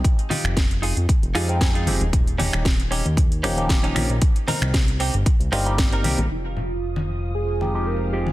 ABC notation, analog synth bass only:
X:1
M:4/4
L:1/16
Q:"Swing 16ths" 1/4=115
K:Fm
V:1 name="Analog synth bass" clef=bass
z3 F,,,4 F,, z F,,, F,,4 F,,, E,,, | E,,,3 E,,,4 E,,3 E,,,4 B,,, B,,, | z3 C,,4 G,,, z C,, G,,,4 C,, B,,, | F,,,16 |]